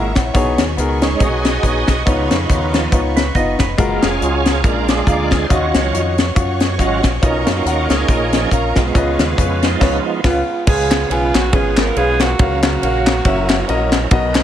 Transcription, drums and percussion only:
0.15 kick medium
0.15 snare medium
0.15 closed hi-hat medium
0.34 kick loud
0.34 closed hi-hat medium
0.58 snare loud
0.58 closed hi-hat medium
0.78 closed hi-hat medium
1.02 snare loud
1.02 closed hi-hat medium
1.20 kick medium
1.20 closed hi-hat medium
1.45 snare loud
1.45 closed hi-hat medium
1.63 kick medium
1.63 closed hi-hat medium
1.87 kick medium
1.87 snare medium
1.87 closed hi-hat medium
2.07 kick loud
2.07 closed hi-hat medium
2.31 snare loud
2.31 closed hi-hat medium
2.50 kick medium
2.50 closed hi-hat medium
2.74 snare loud
2.74 closed hi-hat medium
2.92 kick medium
2.92 closed hi-hat medium
3.16 snare loud
3.16 closed hi-hat medium
3.35 kick medium
3.35 closed hi-hat medium
3.59 kick medium
3.59 snare medium
3.59 closed hi-hat medium
3.78 kick loud
3.78 closed hi-hat medium
4.02 snare loud
4.02 closed hi-hat medium
4.22 closed hi-hat medium
4.45 snare loud
4.45 closed hi-hat medium
4.64 kick loud
4.64 closed hi-hat medium
4.88 snare loud
4.88 closed hi-hat medium
5.07 kick medium
5.07 closed hi-hat medium
5.31 kick medium
5.31 snare medium
5.31 closed hi-hat medium
5.50 kick loud
5.50 closed hi-hat medium
5.74 snare loud
5.74 closed hi-hat medium
5.94 closed hi-hat medium
6.18 snare loud
6.18 closed hi-hat medium
6.36 kick loud
6.36 closed hi-hat medium
6.60 snare loud
6.60 closed hi-hat medium
6.79 kick medium
6.79 closed hi-hat medium
7.03 kick medium
7.03 snare medium
7.03 closed hi-hat medium
7.23 kick loud
7.23 closed hi-hat medium
7.47 snare loud
7.47 closed hi-hat medium
7.66 closed hi-hat medium
7.90 snare loud
7.90 closed hi-hat medium
8.08 kick medium
8.08 closed hi-hat medium
8.33 snare loud
8.33 closed hi-hat medium
8.51 kick medium
8.51 closed hi-hat medium
8.76 kick medium
8.76 snare medium
8.76 closed hi-hat medium
8.95 kick loud
8.95 closed hi-hat medium
9.19 snare loud
9.19 closed hi-hat medium
9.38 kick medium
9.38 closed hi-hat medium
9.62 snare medium
9.62 closed hi-hat medium
9.81 kick medium
9.81 snare medium
9.81 crash medium
10.24 kick medium
10.24 snare loud
10.24 crash medium
10.67 kick loud
10.67 crash loud
10.91 snare loud
10.91 clap loud
10.91 ride medium
11.11 ride medium
11.34 snare loud
11.34 clap medium
11.34 ride medium
11.53 kick loud
11.53 ride medium
11.77 snare loud
11.77 clap medium
11.77 ride medium
11.96 ride medium
12.20 snare medium
12.20 clap loud
12.20 ride medium
12.39 kick loud
12.39 ride medium
12.63 snare loud
12.63 clap loud
12.63 ride medium
12.83 ride medium
13.06 snare loud
13.06 clap loud
13.06 ride medium
13.25 kick loud
13.25 ride medium
13.49 snare loud
13.49 clap loud
13.49 ride medium
13.69 ride medium
13.92 snare loud
13.92 clap medium
13.92 ride medium
14.11 kick loud
14.11 ride medium
14.35 snare loud
14.35 clap loud
14.35 ride medium

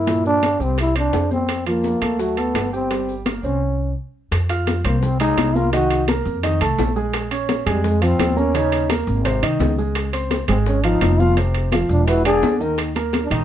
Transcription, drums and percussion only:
0.07 high bongo medium
0.07 high timbale medium
0.07 maracas medium
0.25 high bongo soft
0.25 maracas soft
0.43 high bongo soft
0.43 high conga medium
0.43 high timbale medium
0.43 low timbale medium
0.43 maracas medium
0.61 high conga soft
0.61 maracas soft
0.78 high bongo medium
0.78 high conga soft
0.78 high timbale medium
0.78 maracas medium
0.96 high bongo soft
0.96 high conga soft
0.96 high timbale medium
0.96 maracas soft
1.13 high bongo medium
1.13 low bongo medium
1.13 high conga soft
1.13 low timbale medium
1.13 maracas medium
1.31 high bongo soft
1.31 high conga medium
1.31 maracas soft
1.48 high bongo medium
1.48 high conga soft
1.48 high timbale medium
1.48 maracas medium
1.66 high conga soft
1.66 high timbale medium
1.66 maracas soft
1.84 high bongo soft
1.84 high conga medium
1.84 low timbale soft
1.84 maracas medium
2.01 high conga medium
2.01 high timbale medium
2.01 maracas soft
2.19 high bongo medium
2.19 high conga soft
2.19 maracas medium
2.37 high conga soft
2.37 high timbale medium
2.37 maracas soft
2.55 high bongo medium
2.55 low bongo medium
2.55 high timbale medium
2.55 low timbale medium
2.55 maracas medium
2.73 maracas soft
2.91 high bongo medium
2.91 high conga soft
2.91 high timbale medium
2.91 maracas medium
3.08 high bongo soft
3.08 high conga soft
3.08 maracas soft
3.26 high bongo medium
3.26 high conga medium
3.26 high timbale medium
3.26 low timbale soft
3.26 maracas medium
3.44 high conga soft
3.44 maracas soft
4.32 high bongo medium
4.32 high conga soft
4.32 high timbale medium
4.32 maracas medium
4.49 high bongo soft
4.49 high conga soft
4.49 high timbale medium
4.49 maracas medium
4.67 high bongo medium
4.67 high conga medium
4.67 high timbale medium
4.67 maracas medium
4.85 high conga soft
4.85 low conga medium
4.85 high timbale medium
4.85 maracas soft
5.03 high bongo medium
5.03 high conga soft
5.03 low conga medium
5.03 maracas medium
5.20 high bongo soft
5.20 high timbale medium
5.20 maracas medium
5.37 high bongo soft
5.37 low bongo medium
5.37 high conga medium
5.37 high timbale medium
5.37 maracas medium
5.55 high bongo soft
5.55 high conga medium
5.55 maracas soft
5.73 high bongo medium
5.73 high timbale medium
5.73 maracas medium
5.90 high bongo soft
5.90 high conga soft
5.90 high timbale medium
5.90 maracas medium
6.08 high bongo medium
6.08 high conga loud
6.08 high timbale medium
6.08 maracas medium
6.26 high conga soft
6.26 maracas soft
6.43 high bongo medium
6.43 high conga soft
6.43 high timbale medium
6.43 maracas medium
6.61 high bongo soft
6.61 high conga soft
6.61 high timbale medium
6.61 maracas medium
6.79 high bongo soft
6.79 low bongo medium
6.79 high conga medium
6.79 low timbale medium
6.79 maracas medium
6.96 high bongo soft
6.96 maracas soft
7.13 high bongo medium
7.13 high conga soft
7.13 high timbale medium
7.13 maracas medium
7.31 high bongo soft
7.31 high conga soft
7.31 high timbale medium
7.31 maracas medium
7.49 high bongo medium
7.49 high conga loud
7.49 high timbale medium
7.49 maracas medium
7.66 high conga soft
7.66 low conga medium
7.66 high timbale medium
7.66 maracas soft
7.84 high bongo medium
7.84 high conga soft
7.84 low conga medium
7.84 maracas medium
8.02 high bongo soft
8.02 high conga soft
8.02 high timbale medium
8.02 maracas medium
8.19 high bongo soft
8.19 low bongo medium
8.19 high conga medium
8.19 high timbale medium
8.19 low timbale medium
8.19 maracas medium
8.37 high bongo soft
8.37 high conga medium
8.37 maracas soft
8.55 high bongo medium
8.55 high timbale medium
8.55 maracas medium
8.72 high bongo soft
8.72 high conga soft
8.72 high timbale medium
8.72 maracas medium
8.90 high bongo medium
8.90 high conga loud
8.90 high timbale medium
8.90 maracas medium
9.08 high conga soft
9.08 maracas soft
9.25 high bongo medium
9.25 high conga soft
9.25 high timbale medium
9.25 maracas medium
9.43 high bongo soft
9.43 high conga soft
9.43 high timbale loud
9.60 high bongo soft
9.60 low bongo medium
9.60 high conga medium
9.60 low timbale medium
9.60 maracas medium
9.78 high bongo soft
9.78 high conga soft
9.78 maracas soft
9.95 high bongo medium
9.95 high conga soft
9.95 high timbale medium
9.95 maracas medium
10.13 high bongo soft
10.13 high conga soft
10.13 high timbale medium
10.13 maracas medium
10.31 high bongo medium
10.31 high conga loud
10.31 high timbale medium
10.31 maracas medium
10.48 high conga soft
10.48 low conga medium
10.48 high timbale medium
10.48 maracas soft
10.66 high bongo medium
10.66 high conga soft
10.66 maracas medium
10.84 high bongo soft
10.84 high timbale medium
11.01 high bongo soft
11.01 low bongo medium
11.01 high conga medium
11.01 high timbale medium
11.01 maracas medium
11.19 high bongo soft
11.19 high conga medium
11.19 maracas soft
11.37 high bongo medium
11.37 high conga soft
11.37 high timbale medium
11.37 maracas medium
11.54 high bongo soft
11.54 high conga soft
11.54 high timbale medium
11.72 high bongo medium
11.72 high conga medium
11.72 high timbale medium
11.72 maracas medium
11.89 high conga soft
11.89 maracas soft
12.07 high bongo medium
12.07 high conga soft
12.07 high timbale medium
12.07 maracas medium
12.25 high bongo soft
12.25 high conga soft
12.25 high timbale medium
12.25 maracas medium
12.43 high bongo soft
12.43 low bongo medium
12.43 high conga medium
12.43 low timbale medium
12.43 maracas medium
12.60 high bongo soft
12.60 high conga soft
12.60 maracas soft
12.78 high bongo medium
12.78 high conga soft
12.78 high timbale medium
12.78 maracas medium
12.95 high bongo soft
12.95 high conga soft
12.95 high timbale medium
12.95 maracas medium
13.13 high bongo medium
13.13 high conga loud
13.13 high timbale medium
13.13 maracas medium
13.31 high conga soft
13.31 low conga medium
13.31 high timbale medium
13.31 maracas soft

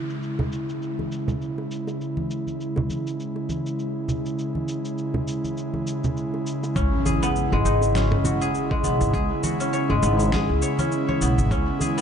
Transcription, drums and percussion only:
0.10 shaker soft
0.23 shaker soft
0.39 high bongo medium
0.39 low conga medium
0.52 shaker medium
0.69 shaker soft
0.82 shaker soft
0.99 high bongo soft
0.99 high conga soft
1.12 shaker medium
1.28 low conga medium
1.28 shaker soft
1.42 shaker soft
1.58 high bongo soft
1.71 shaker medium
1.87 high bongo medium
1.87 shaker soft
2.01 shaker soft
2.17 high conga medium
2.31 shaker medium
2.47 high conga soft
2.47 shaker soft
2.61 shaker soft
2.76 high bongo medium
2.76 low conga medium
2.90 high conga medium
2.90 shaker medium
3.07 shaker soft
3.20 shaker soft
3.36 high bongo soft
3.49 high conga medium
3.49 shaker medium
3.66 shaker soft
3.79 shaker soft
4.08 low conga medium
4.08 shaker medium
4.26 shaker soft
4.39 shaker soft
4.55 high conga medium
4.68 shaker medium
4.85 shaker soft
4.98 shaker soft
5.14 high bongo medium
5.14 low conga medium
5.28 shaker medium
5.44 high conga soft
5.44 shaker soft
5.57 shaker soft
5.74 high bongo soft
5.74 high conga medium
5.87 shaker medium
6.04 low conga medium
6.04 shaker soft
6.17 shaker soft
6.34 high bongo soft
6.47 shaker medium
6.63 high bongo medium
6.63 shaker soft
6.76 kick loud
6.76 shaker soft
7.05 high bongo medium
7.05 high conga medium
7.05 shaker medium
7.23 shaker soft
7.36 shaker soft
7.53 high bongo medium
7.65 shaker medium
7.81 high bongo medium
7.81 shaker soft
7.95 snare medium
7.95 shaker soft
8.11 mid tom medium
8.11 high bongo medium
8.24 high conga medium
8.24 low conga medium
8.24 shaker medium
8.42 shaker soft
8.55 shaker soft
8.71 kick loud
8.71 high bongo medium
8.84 high conga medium
8.84 shaker medium
9.01 low conga medium
9.01 shaker soft
9.14 kick loud
9.14 shaker soft
9.43 high bongo soft
9.43 high conga medium
9.43 shaker medium
9.60 shaker soft
9.73 shaker soft
9.89 high bongo medium
10.03 shaker medium
10.19 high bongo medium
10.19 shaker soft
10.32 kick loud
10.32 snare medium
10.32 shaker soft
10.62 shaker medium
10.79 high conga medium
10.79 shaker soft
10.92 shaker soft
11.09 high conga medium
11.22 shaker medium
11.38 high conga soft
11.38 shaker soft
11.51 kick loud
11.51 shaker soft
11.79 high bongo soft
11.79 high conga medium
11.79 shaker medium
11.98 shaker soft

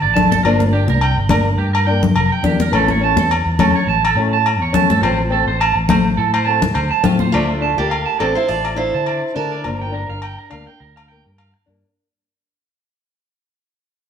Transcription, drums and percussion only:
0.16 low conga medium
0.32 high conga medium
0.45 low agogo medium
0.60 high conga medium
0.88 high conga medium
1.01 low agogo medium
1.29 high conga medium
1.29 low conga medium
1.29 low agogo medium
1.75 low agogo medium
2.03 low conga medium
2.16 low agogo medium
2.44 low conga medium
2.60 high conga medium
2.73 low agogo medium
2.88 high conga medium
3.17 high conga medium
3.31 low agogo medium
3.59 high conga medium
3.59 low conga medium
3.59 low agogo medium
4.05 low agogo medium
4.46 low agogo medium
4.74 low conga medium
4.90 high conga medium
5.03 low agogo medium
5.61 low agogo medium
5.89 high conga medium
5.89 low conga medium
5.89 low agogo medium
6.34 low agogo medium
6.62 low conga medium
6.75 low agogo medium
7.04 low conga medium
7.19 high conga medium
7.34 low agogo medium
7.91 low agogo medium
8.20 low agogo medium
8.65 low agogo medium
9.06 low agogo medium
9.64 low agogo medium
10.22 low agogo medium
10.51 low agogo medium
10.97 low agogo medium
11.38 low agogo medium

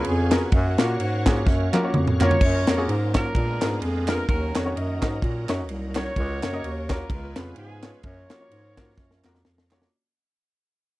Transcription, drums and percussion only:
0.04 ride medium
0.31 snare loud
0.31 clap medium
0.31 ride medium
0.52 kick loud
0.52 ride medium
0.78 snare loud
0.78 clap loud
0.78 ride medium
1.00 ride medium
1.26 kick loud
1.26 snare loud
1.26 clap loud
1.26 ride soft
1.47 kick loud
1.47 snare medium
1.74 clap medium
1.74 high tom medium
1.94 mid tom medium
2.07 mid tom loud
2.21 clap loud
2.21 floor tom loud
2.31 floor tom loud
2.41 kick loud
2.41 crash loud
2.67 snare loud
2.67 clap medium
2.67 ride medium
2.89 ride medium
3.15 kick medium
3.15 snare loud
3.15 clap loud
3.15 ride soft
3.35 kick loud
3.35 ride medium
3.62 snare loud
3.62 clap loud
3.62 ride medium
3.82 ride medium
4.08 snare loud
4.08 clap loud
4.08 ride medium
4.29 kick loud
4.29 ride medium
4.55 snare loud
4.55 clap loud
4.55 ride medium
4.77 ride medium
5.02 kick medium
5.02 snare loud
5.02 clap loud
5.02 ride soft
5.22 kick loud
5.22 ride medium
5.49 snare loud
5.49 clap loud
5.49 ride medium
5.69 ride medium
5.95 snare loud
5.95 clap medium
5.95 ride medium
6.16 kick loud
6.16 ride medium
6.43 snare loud
6.43 clap loud
6.43 ride medium
6.64 ride medium
6.90 kick loud
6.90 snare loud
6.90 clap loud
6.90 ride soft
7.10 kick loud
7.10 ride medium
7.36 snare loud
7.36 clap loud
7.36 ride medium
7.56 ride medium
7.82 snare loud
7.82 clap loud
7.82 ride medium
8.03 kick loud
8.03 ride medium
8.30 snare loud
8.30 clap loud
8.30 ride medium
8.51 ride medium
8.77 kick medium
8.77 snare loud
8.77 clap loud
8.77 ride soft
8.97 kick loud
8.97 snare medium
9.11 snare medium
9.24 snare medium
9.24 clap loud
9.35 snare medium
9.45 snare medium
9.58 snare medium
9.71 snare loud
9.71 clap loud
9.82 snare loud

